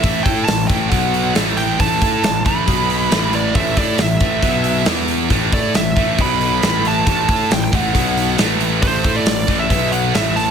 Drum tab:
HH |oooooooo|oooooooo|oooooooo|oooooooo|
SD |--o---o-|--o---o-|--o---o-|--o---o-|
BD |oo-oo---|oo-oo---|oo-oo---|oo-oo---|

HH |oooooooo|oooooooo|
SD |--o---o-|--o---o-|
BD |oo-oo---|oo-oo---|